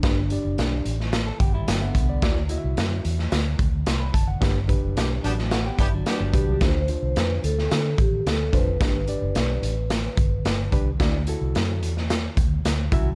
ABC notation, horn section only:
X:1
M:4/4
L:1/16
Q:1/4=109
K:G
V:1 name="Horn section"
z16 | z16 | z4 [B,DG] z [B,DG] z3 [B,DG] z [B,DG]4 | z16 |
z16 | z16 |]